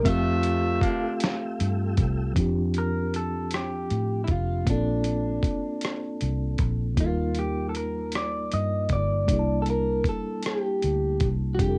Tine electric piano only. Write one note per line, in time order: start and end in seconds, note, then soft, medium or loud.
0.03 2.31 A3 medium
0.03 2.31 C4 medium
0.03 2.32 E5 medium
0.08 2.33 F4 medium
0.08 2.34 G4 medium
2.34 4.61 F3 medium
2.34 4.62 C4 medium
2.34 4.63 D4 medium
2.39 4.64 F4 medium
2.39 4.65 G4 medium
4.65 6.92 A#3 medium
4.65 6.93 C4 soft
4.65 4.74 C#4 soft
4.69 6.95 F4 soft
4.69 6.96 A4 medium
4.74 6.97 D4 medium
6.95 9.23 G3 medium
6.95 9.24 A#3 soft
6.95 9.24 D#4 medium
7.00 9.25 F4 medium
7.00 7.06 A4 soft
7.08 9.29 A#4 medium
9.26 11.54 G3 medium
9.26 11.55 A#3 soft
9.26 11.56 D4 medium
9.31 11.56 E4 medium
9.31 9.37 G#4 medium
9.39 11.60 A5 medium
11.57 11.78 G3 medium
11.57 11.78 C4 soft
11.57 11.78 D4 soft
11.62 11.78 F4 medium
11.62 11.67 G#4 soft
11.69 11.78 A4 medium